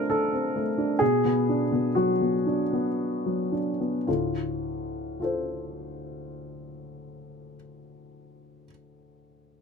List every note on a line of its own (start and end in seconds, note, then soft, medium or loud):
0.00 0.97 D3 soft
0.00 0.56 A3 soft
0.00 0.33 C4 soft
0.00 0.78 D4 soft
0.00 1.03 F4 medium
0.00 0.10 A#4 medium
0.10 1.00 A4 medium
0.33 0.69 C4 soft
0.56 0.92 A3 soft
0.78 1.01 D4 soft
0.99 4.03 B2 soft
0.99 1.94 G#4 medium
1.25 1.62 B3 soft
1.49 1.86 D4 soft
1.72 2.11 B3 soft
1.95 2.36 F#3 soft
1.95 3.51 F#4 medium
2.21 2.61 B3 soft
2.46 2.87 D4 soft
2.73 3.58 B3 soft
3.26 3.69 F#3 soft
3.52 3.96 D4 soft
3.80 4.07 B3 soft
4.07 7.53 D2 soft
4.07 7.54 A2 soft
4.07 5.18 F4 soft
5.20 8.65 F4 soft
5.20 8.67 A4 soft
5.24 8.69 C5 soft